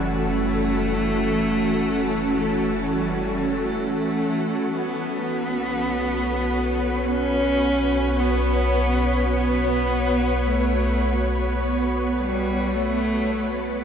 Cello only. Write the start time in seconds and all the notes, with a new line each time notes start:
0.06 A3
2.36 A3
2.97 G3
3.54 A3
4.71 B3
7.04 C#4
8.20 B3
9.34 B3
10.47 A3
12.19 G3
12.75 A3